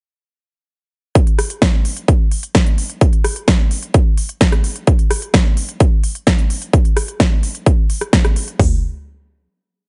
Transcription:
1.15 kick loud
1.15 closed hi-hat medium
1.27 closed hi-hat soft
1.39 cross-stick medium
1.39 open hi-hat loud
1.50 closed hi-hat medium
1.62 kick loud
1.62 snare loud
1.62 closed hi-hat medium
1.85 open hi-hat loud
1.97 closed hi-hat medium
2.08 kick loud
2.08 closed hi-hat medium
2.31 open hi-hat loud
2.43 closed hi-hat medium
2.55 kick loud
2.55 snare loud
2.55 closed hi-hat medium
2.66 closed hi-hat soft
2.78 open hi-hat loud
2.90 closed hi-hat medium
3.01 kick loud
3.01 closed hi-hat medium
3.13 closed hi-hat soft
3.24 cross-stick medium
3.24 open hi-hat loud
3.36 closed hi-hat medium
3.48 kick loud
3.48 snare loud
3.48 closed hi-hat medium
3.71 open hi-hat loud
3.83 closed hi-hat medium
3.94 kick loud
3.94 closed hi-hat medium
4.18 open hi-hat loud
4.29 closed hi-hat medium
4.41 kick loud
4.41 snare loud
4.41 closed hi-hat medium
4.52 cross-stick medium
4.52 closed hi-hat soft
4.64 open hi-hat loud
4.76 closed hi-hat medium
4.87 kick loud
4.87 closed hi-hat medium
4.99 closed hi-hat soft
5.11 cross-stick medium
5.11 open hi-hat loud
5.22 closed hi-hat medium
5.34 kick loud
5.34 snare loud
5.34 closed hi-hat medium
5.57 open hi-hat loud
5.69 closed hi-hat medium
5.80 kick loud
5.80 closed hi-hat medium
6.04 open hi-hat loud
6.15 closed hi-hat medium
6.27 kick loud
6.27 snare loud
6.27 closed hi-hat medium
6.39 closed hi-hat soft
6.50 open hi-hat loud
6.62 closed hi-hat medium
6.73 kick loud
6.73 closed hi-hat medium
6.85 closed hi-hat soft
6.97 cross-stick medium
6.97 open hi-hat loud
7.08 closed hi-hat soft
7.20 kick loud
7.20 snare loud
7.20 closed hi-hat medium
7.43 open hi-hat loud
7.55 closed hi-hat medium
7.66 kick loud
7.66 closed hi-hat medium
7.90 open hi-hat loud
8.01 cross-stick medium
8.01 closed hi-hat medium
8.13 kick loud
8.13 snare loud
8.13 closed hi-hat medium
8.25 cross-stick medium
8.25 closed hi-hat soft
8.36 open hi-hat loud
8.48 closed hi-hat medium
8.60 kick loud
8.60 floor tom loud
8.60 open hi-hat medium

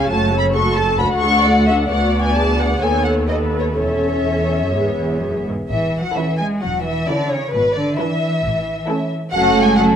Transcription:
0.09 0.98 F#1 medium
0.09 0.98 F#2 medium
0.09 0.30 A3 medium
0.09 0.30 F#4 medium
0.09 0.54 C#5 medium
0.09 0.38 A5 medium
0.32 0.54 C#4 soft
0.32 0.54 A4 soft
0.39 0.45 B5 medium
0.54 0.77 A3 medium
0.54 0.77 F#4 medium
0.54 0.99 A4 medium
0.54 0.77 C#6 medium
0.76 0.99 C#4 soft
0.76 0.99 A4 medium
0.76 0.99 A5 medium
0.99 1.89 D2 medium
0.99 1.90 D2 medium
0.99 1.21 A3 soft
0.99 1.21 F#4 soft
0.99 1.91 F#5 medium
0.99 1.07 B5 medium
1.21 1.45 D4 soft
1.21 1.45 A4 soft
1.21 1.44 C#6 medium
1.43 1.68 A3 soft
1.43 1.68 F#4 soft
1.43 1.67 D5 medium
1.67 1.91 D4 soft
1.67 1.91 A4 medium
1.67 1.75 E5 medium
1.89 2.79 D2 medium
1.89 2.79 B3 medium
1.89 2.34 F#4 medium
1.89 2.80 D5 medium
1.89 2.20 F#5 medium
2.22 2.37 G#5 medium
2.37 2.82 G#4 medium
2.37 2.60 A5 medium
2.60 2.82 F#5 medium
2.81 3.77 D#2 medium
2.81 3.78 D#2 soft
2.81 3.28 B3 soft
2.81 3.28 A4 soft
2.81 3.28 C#5 medium
2.81 3.05 G#5 medium
3.05 3.13 F#5 medium
3.29 3.76 B3 soft
3.29 3.76 A4 soft
3.29 3.77 B4 soft
3.29 3.37 D#5 medium
3.60 3.66 C#5 medium
3.76 4.74 E1 soft
3.76 4.21 E2 soft
3.76 4.73 C#4 soft
3.76 4.73 A4 soft
3.76 5.47 C#5 medium
3.76 5.44 E5 medium
4.26 4.56 E2 soft
4.58 4.75 F#2 soft
4.74 5.49 E1 soft
4.74 4.98 G#2 soft
4.74 5.49 B3 soft
4.74 5.49 G#4 soft
4.98 5.22 E2 soft
5.22 5.47 F#2 soft
5.47 5.55 G#2 soft
5.70 6.07 A1 medium
5.70 5.99 E3 medium
5.70 5.99 E5 medium
6.00 6.16 F#3 medium
6.00 6.16 F#5 medium
6.16 6.39 E3 medium
6.16 6.51 E3 soft
6.16 6.50 C#4 soft
6.16 6.50 E4 soft
6.16 6.50 A4 soft
6.16 6.39 E5 medium
6.38 6.62 G#3 medium
6.38 6.46 G#5 medium
6.62 6.99 E1 medium
6.62 6.85 F#3 medium
6.62 6.84 F#5 medium
6.83 7.08 E3 medium
6.83 7.06 E5 medium
7.08 7.30 D3 medium
7.08 7.42 E3 medium
7.08 7.42 C#4 soft
7.08 7.42 E4 soft
7.08 7.42 A4 soft
7.08 7.31 D5 medium
7.31 7.53 C#3 medium
7.31 7.53 C#5 medium
7.52 7.89 G#1 medium
7.52 7.62 B2 medium
7.52 7.75 B4 medium
7.74 7.98 D3 medium
7.74 7.98 D5 medium
7.97 9.11 E3 medium
7.97 8.32 E3 medium
7.97 8.32 D4 medium
7.97 8.32 E4 medium
7.97 8.31 B4 medium
7.97 9.08 E5 medium
8.43 8.79 A1 medium
8.87 9.22 A3 medium
8.87 9.22 C#4 medium
8.87 9.22 E4 medium
8.87 9.21 A4 medium
9.32 9.96 F#1 medium
9.32 9.61 F#3 medium
9.32 9.76 A3 medium
9.32 9.76 C#4 medium
9.32 9.75 F#4 medium
9.32 9.75 A4 medium
9.32 9.60 F#5 loud
9.62 9.78 G#3 medium
9.62 9.78 G#5 medium
9.77 9.96 F#3 medium
9.77 9.96 A3 medium
9.77 9.96 C#4 medium
9.77 9.96 F#4 medium
9.77 9.96 A4 medium
9.77 9.85 F#5 medium

